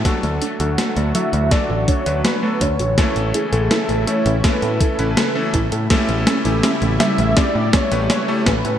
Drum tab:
HH |xxxxxxxxx-xxx-xx|xxxxxxxxxxxxx-xx|xxxxxxxxx-xxx-xx|
SD |o---o---o---o---|o---o---o---o---|o-o-o-o-o-o-o-o-|
BD |o-------o-o---o-|o-------o-o---o-|o-------o-o---o-|